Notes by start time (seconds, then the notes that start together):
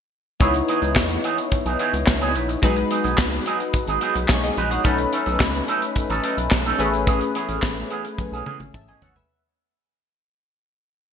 0.40 C#2 E3 B3 D#4 E4 G#4 C#5, kick, closed hi-hat, shaker
0.54 muted clean electric guitar stroke, closed hi-hat, shaker
0.68 E3 B3 D#4 G#4, closed hi-hat
0.82 C#2 E3 B3 D#4 G#4, closed hi-hat, shaker
0.96 E2, kick, snare, clap, shaker
1.10 muted clean electric guitar stroke, closed hi-hat, shaker
1.24 E3 B3 D#4 G#4, closed hi-hat
1.38 muted clean electric guitar stroke, closed hi-hat, shaker
1.52 muted clean electric guitar stroke, kick, closed hi-hat, shaker
1.65 B1 E3 B3 D#4 G#4, closed hi-hat, shaker
1.79 E3 B3 D#4 G#4, closed hi-hat
1.93 C#2, muted clean electric guitar stroke, closed hi-hat, shaker
2.07 C#2, muted clean electric guitar stroke, kick, snare, clap, shaker
2.21 E3 B3 D#4 G#4, closed hi-hat, shaker
2.35 A#1 E3 B3 D#4 B4, closed hi-hat, shaker
2.49 muted clean electric guitar stroke, closed hi-hat, shaker
2.62 B1 F#3 G#3 B3 D#4 F#4 G#4 B4, kick, closed hi-hat, shaker
2.76 muted clean electric guitar stroke, closed hi-hat, shaker
2.90 F#3 B3 D#4 G#4, closed hi-hat
3.04 B1 F#3 B3 D#4 G#4, closed hi-hat, shaker
3.18 C#2, kick, snare, clap, shaker
3.32 muted clean electric guitar stroke, closed hi-hat, shaker
3.46 F#3 B3 D#4 G#4, closed hi-hat
3.60 muted clean electric guitar stroke, closed hi-hat, shaker
3.73 muted clean electric guitar stroke, kick, closed hi-hat, shaker
3.87 G#1 F#3 B3 D#4 G#4, closed hi-hat, shaker
4.01 F#3 B3 D#4 G#4, closed hi-hat
4.15 B1, muted clean electric guitar stroke, closed hi-hat, shaker
4.28 B1 G#4 C#5, muted clean electric guitar stroke, kick, snare, clap, shaker
4.43 G#4 D#5, muted clean electric guitar stroke, closed hi-hat, shaker
4.57 A#1 F#3 B3 D#4 B4, closed hi-hat, shaker
4.71 F#3 B3 D#4 G#4 C#5 F#5, closed hi-hat, shaker
4.84 B1 F#3 A3 C#4 D#4 A4 B4, kick, closed hi-hat, shaker
4.98 muted clean electric guitar stroke, closed hi-hat, shaker
5.12 F#3 C#4 D#4 A4, closed hi-hat
5.26 B1 F#3 C#4 D#4 A4, closed hi-hat, shaker
5.40 C#2, kick, snare, clap, shaker
5.54 muted clean electric guitar stroke, closed hi-hat, shaker
5.68 F#3 C#4 D#4 A4, closed hi-hat
5.82 muted clean electric guitar stroke, closed hi-hat, shaker
5.95 muted clean electric guitar stroke, kick, closed hi-hat, shaker
6.09 A1 F#3 C#4 D#4 A4, closed hi-hat, shaker
6.23 F#3 C#4 D#4 A4, closed hi-hat
6.37 B1, muted clean electric guitar stroke, closed hi-hat, shaker
6.51 B1, muted clean electric guitar stroke, kick, snare, clap, shaker
6.65 F#3 C#4 D#4 A4, closed hi-hat, shaker
6.78 A1 E3 A3 B3 C#4 G#4 A4 B4, closed hi-hat, shaker
6.93 muted clean electric guitar stroke, closed hi-hat, shaker
7.07 E3 B3 C#4 G#4, kick, closed hi-hat, shaker
7.21 muted clean electric guitar stroke, closed hi-hat, shaker
7.35 E3 B3 C#4 G#4, closed hi-hat
7.49 A1 E3 B3 C#4 G#4, closed hi-hat, shaker
7.62 A1, kick, snare, clap, shaker
7.76 muted clean electric guitar stroke, closed hi-hat, shaker
7.90 E3 B3 C#4 G#4, closed hi-hat
8.04 muted clean electric guitar stroke, closed hi-hat, shaker
8.18 muted clean electric guitar stroke, kick, high tom, shaker
8.32 B1 E3 B3 C#4 G#4, shaker
8.46 E3 B3 C#4 G#4, mid tom
8.60 G#1, muted clean electric guitar stroke, mid tom, shaker
8.74 A1 E5 A5, muted clean electric guitar stroke, kick, mid tom, shaker
8.87 E3 B3 C#4 G#4 D#5 G#5, shaker
9.01 G#1 E3 B3 C#4 A4 C#5 F#5, floor tom, shaker
9.16 B4 E5, muted clean electric guitar stroke, floor tom, shaker